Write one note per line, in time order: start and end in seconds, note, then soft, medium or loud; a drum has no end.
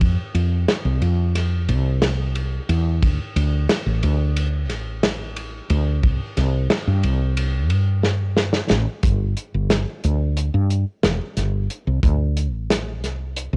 0.01 0.16 F2 loud
0.01 kick loud
0.01 ride medium
0.35 0.65 F2 medium
0.35 ride medium
0.68 snare loud
0.68 ride medium
0.85 1.00 C2 medium
1.02 1.70 F2 medium
1.02 ride medium
1.35 snare soft
1.35 ride medium
1.69 2.58 C2 medium
1.69 ride medium
2.02 snare loud
2.02 ride medium
2.35 ride medium
2.69 3.03 E2 medium
2.69 ride medium
3.03 3.18 D2 loud
3.03 kick loud
3.03 ride medium
3.36 3.66 D2 medium
3.36 ride medium
3.69 snare loud
3.69 ride medium
3.86 4.01 A1 medium
4.03 4.70 D2 medium
4.03 ride medium
4.36 ride medium
4.70 5.60 A1 medium
4.70 snare soft
4.70 ride medium
5.03 snare loud
5.03 ride medium
5.36 ride medium
5.70 6.03 D2 loud
5.70 ride medium
6.03 6.18 C2 loud
6.03 kick loud
6.03 ride medium
6.37 6.67 C2 medium
6.37 snare soft
6.37 ride medium
6.70 snare loud
6.70 ride medium
6.87 7.02 G2 medium
7.03 7.71 C2 loud
7.03 ride medium
7.37 ride medium
7.70 8.60 G2 medium
7.70 ride medium
8.03 snare medium
8.37 snare medium
8.53 snare medium
8.70 8.85 A1 medium
8.70 snare loud
9.03 9.33 G1 medium
9.03 kick loud
9.03 closed hi-hat medium
9.37 closed hi-hat medium
9.54 9.84 G1 medium
9.70 snare loud
9.70 closed hi-hat medium
10.04 10.49 D2 medium
10.04 closed hi-hat medium
10.37 closed hi-hat medium
10.54 10.84 G2 medium
10.70 closed hi-hat medium
11.03 11.18 E1 medium
11.03 snare loud
11.03 closed hi-hat medium
11.37 11.67 G1 medium
11.37 snare soft
11.37 closed hi-hat medium
11.70 closed hi-hat medium
11.87 12.02 C2 medium
12.03 12.53 D2 medium
12.03 kick loud
12.03 closed hi-hat medium
12.37 closed hi-hat medium
12.53 13.03 A1 medium
12.71 snare loud
12.71 closed hi-hat medium
13.03 13.48 C2 loud
13.03 snare soft
13.03 closed hi-hat medium
13.37 closed hi-hat medium
13.53 13.57 C2 medium